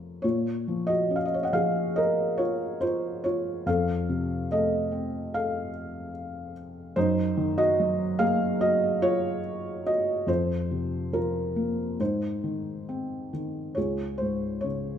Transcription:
0.00 0.20 F2 medium
0.00 0.26 A3 soft
0.00 0.26 A#4 soft
0.00 0.25 C5 soft
0.00 0.22 C#5 soft
0.22 3.62 A#2 soft
0.22 0.84 F4 soft
0.22 0.89 C#5 medium
0.68 1.51 F3 soft
0.87 1.15 F#4 medium
0.87 1.16 D#5 medium
1.10 2.77 C#4 soft
1.16 1.25 F5 medium
1.25 1.35 D#5 medium
1.34 1.44 C#5 medium
1.43 1.53 D#5 medium
1.43 1.52 F#5 soft
1.53 3.19 F3 soft
1.53 1.94 G#4 medium
1.53 1.97 F5 medium
1.96 2.37 A#4 medium
1.96 2.40 D#5 medium
2.38 2.78 F4 medium
2.38 2.81 C#5 medium
2.81 3.21 F4 medium
2.81 3.24 C5 medium
3.24 3.64 F4 medium
3.24 3.67 C#5 medium
3.66 6.93 F2 medium
3.66 4.47 A4 medium
3.66 4.53 F5 medium
4.09 5.70 C3 soft
4.51 6.11 A3 soft
4.51 5.30 A4 medium
4.51 5.36 D#5 medium
4.92 6.52 C4 medium
5.34 6.53 A4 medium
5.34 6.52 F5 medium
6.96 10.24 F#2 medium
6.96 7.55 D#4 medium
6.96 7.59 C5 medium
7.37 8.98 D#3 medium
7.58 8.16 F#4 medium
7.58 8.21 D#5 medium
7.79 9.40 F#3 medium
8.19 9.81 A#3 soft
8.19 8.58 G#4 medium
8.19 8.62 F5 medium
8.61 8.99 F#4 medium
8.61 9.03 D#5 medium
9.02 9.81 F4 medium
9.02 9.88 C#5 loud
9.86 10.26 F#4 medium
9.86 10.26 D#5 medium
10.27 11.95 F2 medium
10.27 11.10 F4 soft
10.27 11.16 C5 medium
10.71 11.96 C3 soft
11.13 11.97 F3 soft
11.13 11.96 F4 soft
11.13 11.96 A#4 medium
11.56 11.98 A#3 soft
12.00 13.73 G#2 medium
12.00 13.29 D#4 soft
12.00 13.29 C5 medium
12.44 13.32 D#3 soft
12.89 13.75 C4 soft
13.33 13.76 D#3 soft
13.75 14.98 C#2 soft
13.75 14.98 F4 soft
13.75 14.98 G#4 soft
13.75 14.21 C#5 medium
14.18 14.98 G#2 soft
14.18 14.64 C5 medium
14.61 14.98 C#3 soft
14.61 14.98 C#5 medium

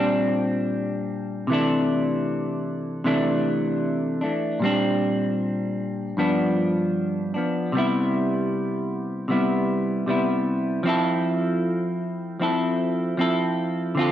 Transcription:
0.00 1.48 A#2 medium
0.00 1.49 G3 medium
0.00 1.51 C4 medium
0.00 1.53 D4 medium
1.47 3.03 C3 medium
1.47 3.04 E3 medium
1.52 3.05 A3 medium
1.52 3.06 D4 medium
3.04 4.22 C3 medium
3.04 4.23 E3 medium
3.04 4.22 A3 medium
3.04 4.21 D4 medium
4.21 4.62 E3 soft
4.21 4.62 A3 soft
4.21 4.61 D4 medium
4.60 6.16 A#2 medium
4.60 6.18 G3 medium
4.64 6.19 C4 medium
4.64 6.19 D4 medium
6.17 7.34 G2 medium
6.17 7.35 F3 medium
6.17 7.36 B3 medium
6.17 7.33 D4 medium
7.34 7.74 F3 soft
7.34 7.74 B3 soft
7.34 7.73 D4 soft
7.72 9.27 C3 medium
7.72 9.29 G3 medium
7.77 9.30 B3 medium
7.77 9.31 E4 medium
9.28 10.05 C3 medium
9.28 10.06 G3 medium
9.28 10.08 B3 medium
9.28 10.10 E4 medium
10.06 10.85 C3 medium
10.06 10.83 G3 medium
10.06 10.85 B3 medium
10.06 10.86 E4 medium
10.83 12.39 F3 medium
10.83 12.41 C4 medium
10.83 12.41 E4 medium
10.89 12.43 A4 medium
12.40 13.17 F3 medium
12.40 13.19 C4 medium
12.40 13.19 E4 medium
12.40 13.21 A4 medium
13.17 14.12 F3 medium
13.17 13.97 C4 medium
13.17 13.97 E4 medium
13.17 14.00 A4 medium
13.95 14.12 D3 medium
13.95 14.12 C4 medium
13.99 14.12 F4 medium
13.99 14.12 A4 medium

